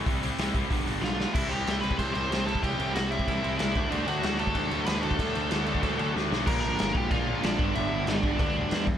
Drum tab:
CC |----------------|x-x-x-x-x-x-x-x-|x-x-x-x-x-x-x-x-|x-x-x-x-x-x-x-x-|
HH |o-o-o-o-o-o-----|----------------|----------------|----------------|
SD |----o-------o-o-|----o-------o---|----o-------o---|----o-------o---|
BD |o-----o-o-------|o------oo------o|o------oo-----o-|-------oo------o|

CC |x-x-x-x-x-x-----|x---x---x---x---|x---x---x---x---|
HH |----------------|----------------|----------------|
SD |----o-------o-o-|----o-------o---|----o-------o---|
BD |o------oo-------|o-----o-o-----o-|------o-o-----o-|